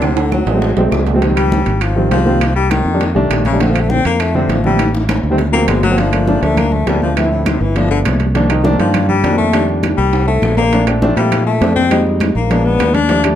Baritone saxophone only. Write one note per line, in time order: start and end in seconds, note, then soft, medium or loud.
0.00 0.19 C3 medium
0.17 0.33 D3 medium
0.32 0.77 F#3 medium
1.37 1.83 G3 loud
1.82 2.11 F3 medium
2.11 2.53 F3 medium
2.56 2.73 G3 loud
2.71 3.16 D#3 medium
3.45 3.62 C#3 loud
3.61 3.72 D3 medium
3.70 3.82 F3 medium
3.80 3.92 A3 medium
3.90 4.05 C4 loud
4.06 4.22 A#3 medium
4.21 4.38 A3 medium
4.36 4.52 C3 medium
4.51 4.65 F3 medium
4.66 4.93 G3 medium
5.53 5.69 A#3 loud
5.68 5.83 G#3 medium
5.83 5.99 F#3 loud
5.98 6.44 F3 medium
6.42 6.60 A3 medium
6.58 6.74 A#3 medium
6.73 6.89 A3 medium
6.88 7.02 G3 medium
7.02 7.18 F3 medium
7.17 7.30 E3 medium
7.31 7.48 A2 medium
7.47 7.62 C3 medium
7.61 7.78 E3 medium
7.77 7.90 F3 medium
7.91 8.00 D3 loud
8.79 9.07 F3 medium
9.09 9.37 G3 loud
9.38 9.66 A3 loud
9.97 10.25 G3 medium
10.27 10.55 A3 medium
10.57 10.85 A#3 loud
11.17 11.44 G3 loud
11.46 11.74 A3 loud
11.76 12.03 C4 loud
12.36 12.66 A#3 medium
12.65 12.96 B3 loud
12.94 13.24 D4 loud